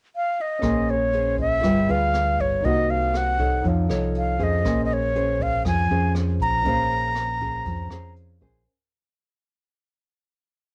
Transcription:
0.16 F5
0.41 D#5
0.59 A#1 A#3 C#4 A#4, kick, cross-stick, closed hi-hat
0.63 G#4 C5 G#5 C6
0.88 C#5, closed hi-hat
1.13 C#4 G#4 C5, closed hi-hat
1.38 E5, kick, closed hi-hat
1.60 G1 G3 F4 G#4, kick, cross-stick, closed hi-hat
1.64 B4 G5
1.88 D2 F4 G#4 B4 F5, closed hi-hat
2.14 cross-stick, closed hi-hat
2.39 G1 C#5, kick, closed hi-hat
2.61 C2 C3 A#3 D#4 A#4 C5, kick, closed hi-hat
2.65 D#4 F#4 D#5 F#5
2.89 F5, closed hi-hat
3.14 F#5, cross-stick, closed hi-hat
3.39 D#4 A4 C#5, kick, closed hi-hat
3.61 F2 F3 D#4 A4, kick, closed hi-hat
3.65 C#5 F5
3.89 C2 D#4 A4 C#5, cross-stick, closed hi-hat
4.15 F5, closed hi-hat
4.39 F2 C#4 G#4 C5, kick, closed hi-hat
4.43 D#5
4.62 A#1 A#3 C#4 A#4 C6, kick, cross-stick, closed hi-hat
4.68 G#5
4.85 D#5
4.90 C#5, closed hi-hat
5.15 C#4 G#4 C5, closed hi-hat
5.40 F5, kick, closed hi-hat
5.65 F2 F3 G#5, kick, cross-stick, closed hi-hat
5.90 F2 C#4 G#4 C5, closed hi-hat
6.15 cross-stick, closed hi-hat
6.40 A#1 A#5, kick, closed hi-hat
6.62 A#1 C#4 A#4, kick, closed hi-hat
6.66 A#3 C#4 G#4 C5 F5
6.91 closed hi-hat
7.15 cross-stick, closed hi-hat
7.40 C#4 G#4 C5, kick, closed hi-hat
7.65 F2 F3, kick, closed hi-hat
7.90 F2 C#4 G#4 C5, cross-stick
8.16 closed hi-hat
8.40 A#1 C#4 G#4 A#4 C5 G#5, kick

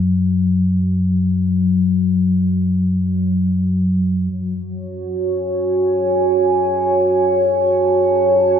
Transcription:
Already playing: F#2 F#3
4.32 F#2 F#3 F#4
4.67 C#5
5.30 G#5
7.60 A5

